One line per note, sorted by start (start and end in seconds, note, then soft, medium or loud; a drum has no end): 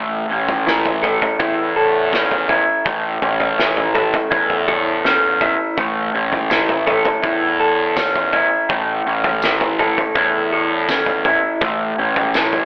0.00 0.24 A1 medium
0.00 2.85 A3 medium
0.00 0.30 C#4 medium
0.00 0.66 E4 medium
0.00 1.02 A4 medium
0.29 1.21 A1 medium
0.29 2.12 C#4 medium
0.49 floor tom medium
0.49 mid tom medium
0.66 1.39 E4 medium
0.66 snare medium
0.86 floor tom medium
1.02 1.76 A4 medium
1.02 floor tom medium
1.22 floor tom medium
1.39 2.62 E2 medium
1.39 2.49 E4 medium
1.39 kick loud
1.39 floor tom medium
1.76 3.94 A4 medium
2.12 3.22 C#4 medium
2.12 kick medium
2.12 snare medium
2.31 floor tom medium
2.49 3.58 E4 medium
2.49 floor tom medium
2.85 3.16 A1 medium
2.85 5.77 A3 medium
2.85 kick loud
2.85 floor tom medium
3.22 4.14 A1 medium
3.22 5.04 C#4 medium
3.22 floor tom medium
3.40 floor tom medium
3.59 4.30 E4 medium
3.59 snare medium
3.77 floor tom medium
3.94 4.67 A4 medium
3.94 floor tom medium
4.14 floor tom medium
4.31 5.53 E2 medium
4.31 5.41 E4 medium
4.31 kick loud
4.31 floor tom medium
4.50 floor tom medium
4.68 6.86 A4 medium
4.68 mid tom medium
5.05 6.13 C#4 medium
5.05 snare medium
5.41 6.50 E4 medium
5.41 floor tom medium
5.78 6.08 A1 loud
5.78 8.69 A3 medium
5.78 kick loud
5.78 floor tom medium
6.14 7.05 A1 medium
6.14 7.96 C#4 medium
6.33 floor tom medium
6.33 mid tom medium
6.50 7.23 E4 medium
6.50 snare medium
6.50 tambourine medium
6.69 floor tom medium
6.87 7.59 A4 medium
6.87 floor tom medium
7.05 floor tom medium
7.23 8.45 E2 medium
7.23 8.33 E4 medium
7.23 kick loud
7.23 floor tom medium
7.60 9.79 A4 medium
7.96 9.06 C#4 medium
7.96 kick medium
7.96 snare medium
7.96 tambourine medium
8.16 floor tom medium
8.33 9.43 E4 medium
8.33 floor tom medium
8.69 9.00 A1 loud
8.69 11.61 A3 medium
8.69 kick loud
8.69 floor tom medium
9.06 9.97 A1 medium
9.06 10.88 C#4 medium
9.24 floor tom medium
9.24 mid tom medium
9.42 10.16 E4 medium
9.42 snare medium
9.42 tambourine medium
9.61 floor tom medium
9.79 10.52 A4 medium
9.79 floor tom medium
9.98 floor tom medium
10.15 11.37 E2 medium
10.15 11.25 E4 medium
10.15 kick loud
10.15 floor tom medium
10.52 12.65 A4 medium
10.89 11.98 C#4 medium
10.89 kick medium
10.89 snare medium
10.89 tambourine medium
11.06 floor tom medium
11.25 12.34 E4 medium
11.25 floor tom medium
11.61 11.92 A1 loud
11.61 12.65 A3 medium
11.61 kick loud
11.61 floor tom medium
11.98 12.65 A1 medium
11.98 12.65 C#4 medium
12.16 floor tom medium
12.16 mid tom medium
12.34 12.65 E4 medium
12.34 snare medium
12.34 tambourine medium
12.53 floor tom medium